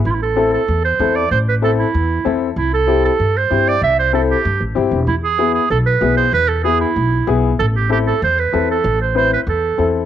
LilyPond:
<<
  \new Staff \with { instrumentName = "Clarinet" } { \time 4/4 \key a \minor \tempo 4 = 191 e'32 f'32 e'16 a'4 a'4 c''4 d''8 | c''8 b'8 a'8 e'2 r8 | e'8 a'4 a'4 c''4 d''8 | e''8 c''8 a'8 g'4~ g'32 r4 r16. |
e'8 gis'4 gis'8 a'8 b'4 c''8 | b'8 a'8 gis'8 e'2 r8 | a'8 g'8 g'8 a'8 c''8 b'4 a'8~ | a'8 c''8 c''8 b'8 a'4. r8 | }
  \new Staff \with { instrumentName = "Upright piano" } { \time 4/4 \key a \minor r4 <c' e' a'>8 r4. <c' e' a'>8 r8 | r4 <c' e' a'>8 r4. <c' e' a'>8 r8 | r4 <c' e' g'>8 r4. <c' e' g'>8 r8 | r4 <c' e' a'>8 r4. <c' e' g'>8 r8 |
r4 <b e' gis'>8 r4. <b e' gis'>8 r8 | r4 <b e' gis'>8 r4. <b e' gis'>8 r8 | r4 <c' e' a'>8 r4. <c' e' a'>8 r8 | r4 <c' e' b'>8 r4. <c' e' a'>8 r8 | }
  \new Staff \with { instrumentName = "Upright bass" } { \clef bass \time 4/4 \key a \minor a,,2 e,4 e,4 | a,,2 e,4 e,4 | c,2 g,4 g,4 | c,2 g,8 a,,8 g,,8 e,,8 |
e,2 b,,4 b,,4 | e,2 b,,4 b,,4 | a,,2 e,4 e,4 | a,,2 e,4 e,4 | }
>>